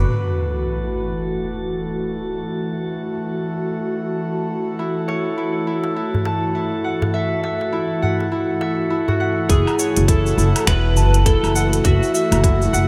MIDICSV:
0, 0, Header, 1, 9, 480
1, 0, Start_track
1, 0, Key_signature, 3, "minor"
1, 0, Tempo, 588235
1, 69, Time_signature, 4, 2, 24, 8
1, 10508, End_track
2, 0, Start_track
2, 0, Title_t, "Harp"
2, 0, Program_c, 0, 46
2, 0, Note_on_c, 0, 66, 100
2, 0, Note_on_c, 0, 71, 105
2, 0, Note_on_c, 0, 83, 76
2, 0, Note_on_c, 0, 86, 70
2, 451, Note_off_c, 0, 83, 0
2, 824, Note_off_c, 0, 86, 0
2, 1406, Note_off_c, 0, 71, 0
2, 1577, Note_off_c, 0, 66, 0
2, 3909, Note_on_c, 0, 64, 68
2, 4144, Note_on_c, 0, 73, 72
2, 4383, Note_off_c, 0, 64, 0
2, 4387, Note_on_c, 0, 64, 72
2, 4624, Note_off_c, 0, 64, 0
2, 4627, Note_on_c, 0, 64, 70
2, 4863, Note_off_c, 0, 64, 0
2, 4866, Note_on_c, 0, 64, 70
2, 5107, Note_on_c, 0, 81, 68
2, 5340, Note_off_c, 0, 64, 0
2, 5344, Note_on_c, 0, 64, 71
2, 5584, Note_on_c, 0, 78, 62
2, 5704, Note_off_c, 0, 73, 0
2, 5824, Note_on_c, 0, 76, 88
2, 6063, Note_off_c, 0, 76, 0
2, 6066, Note_on_c, 0, 76, 72
2, 6290, Note_off_c, 0, 81, 0
2, 6300, Note_off_c, 0, 64, 0
2, 6303, Note_on_c, 0, 64, 84
2, 6543, Note_off_c, 0, 78, 0
2, 6546, Note_on_c, 0, 78, 73
2, 6783, Note_off_c, 0, 64, 0
2, 6786, Note_on_c, 0, 64, 75
2, 7021, Note_off_c, 0, 76, 0
2, 7024, Note_on_c, 0, 76, 68
2, 7261, Note_off_c, 0, 64, 0
2, 7265, Note_on_c, 0, 64, 81
2, 7408, Note_on_c, 0, 66, 90
2, 7503, Note_off_c, 0, 78, 0
2, 7507, Note_on_c, 0, 78, 64
2, 7746, Note_off_c, 0, 64, 0
2, 7749, Note_on_c, 0, 64, 78
2, 7989, Note_on_c, 0, 73, 73
2, 8227, Note_off_c, 0, 64, 0
2, 8231, Note_on_c, 0, 64, 81
2, 8430, Note_off_c, 0, 76, 0
2, 8463, Note_off_c, 0, 64, 0
2, 8466, Note_on_c, 0, 64, 81
2, 8705, Note_off_c, 0, 64, 0
2, 8708, Note_on_c, 0, 64, 80
2, 8819, Note_off_c, 0, 78, 0
2, 8949, Note_on_c, 0, 81, 74
2, 9182, Note_off_c, 0, 64, 0
2, 9186, Note_on_c, 0, 64, 80
2, 9396, Note_off_c, 0, 66, 0
2, 9425, Note_on_c, 0, 78, 70
2, 9549, Note_off_c, 0, 73, 0
2, 9663, Note_on_c, 0, 76, 97
2, 9906, Note_off_c, 0, 76, 0
2, 9909, Note_on_c, 0, 76, 78
2, 10131, Note_off_c, 0, 81, 0
2, 10144, Note_off_c, 0, 64, 0
2, 10148, Note_on_c, 0, 64, 106
2, 10385, Note_off_c, 0, 78, 0
2, 10388, Note_on_c, 0, 78, 83
2, 10508, Note_off_c, 0, 64, 0
2, 10508, Note_off_c, 0, 76, 0
2, 10508, Note_off_c, 0, 78, 0
2, 10508, End_track
3, 0, Start_track
3, 0, Title_t, "Electric slide guitar"
3, 0, Program_c, 1, 29
3, 7751, Note_on_c, 1, 68, 95
3, 8228, Note_off_c, 1, 68, 0
3, 8231, Note_on_c, 1, 69, 89
3, 8709, Note_on_c, 1, 71, 105
3, 8725, Note_off_c, 1, 69, 0
3, 9186, Note_off_c, 1, 71, 0
3, 9189, Note_on_c, 1, 69, 100
3, 9669, Note_on_c, 1, 66, 84
3, 9684, Note_off_c, 1, 69, 0
3, 10508, Note_off_c, 1, 66, 0
3, 10508, End_track
4, 0, Start_track
4, 0, Title_t, "Synth texture"
4, 0, Program_c, 2, 99
4, 67, Note_on_c, 2, 69, 69
4, 7745, Note_on_c, 2, 57, 77
4, 7760, Note_off_c, 2, 69, 0
4, 10508, Note_off_c, 2, 57, 0
4, 10508, End_track
5, 0, Start_track
5, 0, Title_t, "Analog synth pad"
5, 0, Program_c, 3, 89
5, 77, Note_on_c, 3, 66, 80
5, 78, Note_on_c, 3, 52, 79
5, 79, Note_on_c, 3, 57, 67
5, 7721, Note_off_c, 3, 52, 0
5, 7721, Note_off_c, 3, 66, 0
5, 7722, Note_off_c, 3, 57, 0
5, 7743, Note_on_c, 3, 52, 84
5, 7745, Note_on_c, 3, 66, 91
5, 7746, Note_on_c, 3, 57, 74
5, 10508, Note_off_c, 3, 52, 0
5, 10508, Note_off_c, 3, 57, 0
5, 10508, Note_off_c, 3, 66, 0
5, 10508, End_track
6, 0, Start_track
6, 0, Title_t, "Upright bass"
6, 0, Program_c, 4, 32
6, 7748, Note_on_c, 4, 30, 99
6, 7857, Note_off_c, 4, 30, 0
6, 8136, Note_on_c, 4, 30, 93
6, 8432, Note_off_c, 4, 30, 0
6, 8467, Note_on_c, 4, 30, 80
6, 8576, Note_off_c, 4, 30, 0
6, 8707, Note_on_c, 4, 28, 94
6, 8948, Note_off_c, 4, 28, 0
6, 8948, Note_on_c, 4, 30, 86
6, 9275, Note_off_c, 4, 30, 0
6, 9330, Note_on_c, 4, 30, 82
6, 9629, Note_off_c, 4, 30, 0
6, 9669, Note_on_c, 4, 30, 96
6, 9777, Note_off_c, 4, 30, 0
6, 10050, Note_on_c, 4, 30, 100
6, 10349, Note_off_c, 4, 30, 0
6, 10390, Note_on_c, 4, 30, 86
6, 10497, Note_off_c, 4, 30, 0
6, 10508, End_track
7, 0, Start_track
7, 0, Title_t, "Sub drop"
7, 0, Program_c, 5, 103
7, 68, Note_on_c, 5, 60, 64
7, 1989, Note_off_c, 5, 60, 0
7, 10508, End_track
8, 0, Start_track
8, 0, Title_t, "Darbuka"
8, 4151, Note_on_c, 9, 63, 53
8, 4152, Note_on_c, 9, 62, 41
8, 4232, Note_off_c, 9, 63, 0
8, 4234, Note_off_c, 9, 62, 0
8, 4762, Note_on_c, 9, 63, 57
8, 4767, Note_on_c, 9, 62, 48
8, 4843, Note_off_c, 9, 63, 0
8, 4848, Note_off_c, 9, 62, 0
8, 5014, Note_on_c, 9, 64, 73
8, 5095, Note_off_c, 9, 64, 0
8, 5104, Note_on_c, 9, 63, 74
8, 5109, Note_on_c, 9, 62, 46
8, 5185, Note_off_c, 9, 63, 0
8, 5190, Note_off_c, 9, 62, 0
8, 5728, Note_on_c, 9, 64, 84
8, 5731, Note_on_c, 9, 63, 69
8, 5810, Note_off_c, 9, 64, 0
8, 5812, Note_off_c, 9, 63, 0
8, 6069, Note_on_c, 9, 62, 38
8, 6069, Note_on_c, 9, 63, 55
8, 6150, Note_off_c, 9, 62, 0
8, 6151, Note_off_c, 9, 63, 0
8, 6211, Note_on_c, 9, 63, 54
8, 6292, Note_off_c, 9, 63, 0
8, 6555, Note_on_c, 9, 64, 73
8, 6636, Note_off_c, 9, 64, 0
8, 6694, Note_on_c, 9, 62, 56
8, 6696, Note_on_c, 9, 63, 52
8, 6776, Note_off_c, 9, 62, 0
8, 6778, Note_off_c, 9, 63, 0
8, 7027, Note_on_c, 9, 63, 68
8, 7109, Note_off_c, 9, 63, 0
8, 7413, Note_on_c, 9, 64, 81
8, 7494, Note_off_c, 9, 64, 0
8, 7514, Note_on_c, 9, 62, 47
8, 7595, Note_off_c, 9, 62, 0
8, 10508, End_track
9, 0, Start_track
9, 0, Title_t, "Drums"
9, 7748, Note_on_c, 9, 36, 106
9, 7749, Note_on_c, 9, 42, 61
9, 7751, Note_on_c, 9, 82, 46
9, 7829, Note_off_c, 9, 36, 0
9, 7831, Note_off_c, 9, 42, 0
9, 7832, Note_off_c, 9, 82, 0
9, 7894, Note_on_c, 9, 77, 75
9, 7895, Note_on_c, 9, 82, 29
9, 7975, Note_off_c, 9, 77, 0
9, 7977, Note_off_c, 9, 82, 0
9, 7989, Note_on_c, 9, 82, 79
9, 8071, Note_off_c, 9, 82, 0
9, 8132, Note_on_c, 9, 42, 48
9, 8133, Note_on_c, 9, 82, 36
9, 8213, Note_off_c, 9, 42, 0
9, 8215, Note_off_c, 9, 82, 0
9, 8227, Note_on_c, 9, 36, 106
9, 8229, Note_on_c, 9, 42, 60
9, 8231, Note_on_c, 9, 82, 46
9, 8309, Note_off_c, 9, 36, 0
9, 8311, Note_off_c, 9, 42, 0
9, 8312, Note_off_c, 9, 82, 0
9, 8374, Note_on_c, 9, 82, 32
9, 8456, Note_off_c, 9, 82, 0
9, 8474, Note_on_c, 9, 82, 75
9, 8556, Note_off_c, 9, 82, 0
9, 8615, Note_on_c, 9, 42, 44
9, 8615, Note_on_c, 9, 77, 76
9, 8617, Note_on_c, 9, 82, 31
9, 8697, Note_off_c, 9, 42, 0
9, 8697, Note_off_c, 9, 77, 0
9, 8699, Note_off_c, 9, 82, 0
9, 8708, Note_on_c, 9, 36, 106
9, 8710, Note_on_c, 9, 26, 84
9, 8710, Note_on_c, 9, 42, 58
9, 8711, Note_on_c, 9, 82, 46
9, 8790, Note_off_c, 9, 36, 0
9, 8791, Note_off_c, 9, 26, 0
9, 8791, Note_off_c, 9, 42, 0
9, 8793, Note_off_c, 9, 82, 0
9, 8948, Note_on_c, 9, 82, 72
9, 9030, Note_off_c, 9, 82, 0
9, 9092, Note_on_c, 9, 42, 44
9, 9094, Note_on_c, 9, 82, 32
9, 9174, Note_off_c, 9, 42, 0
9, 9176, Note_off_c, 9, 82, 0
9, 9188, Note_on_c, 9, 36, 107
9, 9188, Note_on_c, 9, 42, 60
9, 9190, Note_on_c, 9, 82, 47
9, 9270, Note_off_c, 9, 36, 0
9, 9270, Note_off_c, 9, 42, 0
9, 9271, Note_off_c, 9, 82, 0
9, 9333, Note_on_c, 9, 77, 80
9, 9335, Note_on_c, 9, 82, 30
9, 9415, Note_off_c, 9, 77, 0
9, 9417, Note_off_c, 9, 82, 0
9, 9430, Note_on_c, 9, 82, 75
9, 9512, Note_off_c, 9, 82, 0
9, 9573, Note_on_c, 9, 42, 49
9, 9575, Note_on_c, 9, 82, 36
9, 9655, Note_off_c, 9, 42, 0
9, 9656, Note_off_c, 9, 82, 0
9, 9667, Note_on_c, 9, 42, 57
9, 9668, Note_on_c, 9, 36, 112
9, 9669, Note_on_c, 9, 82, 50
9, 9749, Note_off_c, 9, 42, 0
9, 9750, Note_off_c, 9, 36, 0
9, 9751, Note_off_c, 9, 82, 0
9, 9815, Note_on_c, 9, 82, 32
9, 9897, Note_off_c, 9, 82, 0
9, 9911, Note_on_c, 9, 82, 82
9, 9993, Note_off_c, 9, 82, 0
9, 10054, Note_on_c, 9, 42, 48
9, 10054, Note_on_c, 9, 77, 73
9, 10056, Note_on_c, 9, 82, 37
9, 10136, Note_off_c, 9, 42, 0
9, 10136, Note_off_c, 9, 77, 0
9, 10137, Note_off_c, 9, 82, 0
9, 10148, Note_on_c, 9, 36, 108
9, 10152, Note_on_c, 9, 42, 57
9, 10153, Note_on_c, 9, 82, 46
9, 10230, Note_off_c, 9, 36, 0
9, 10233, Note_off_c, 9, 42, 0
9, 10235, Note_off_c, 9, 82, 0
9, 10296, Note_on_c, 9, 82, 31
9, 10378, Note_off_c, 9, 82, 0
9, 10395, Note_on_c, 9, 82, 75
9, 10477, Note_off_c, 9, 82, 0
9, 10508, End_track
0, 0, End_of_file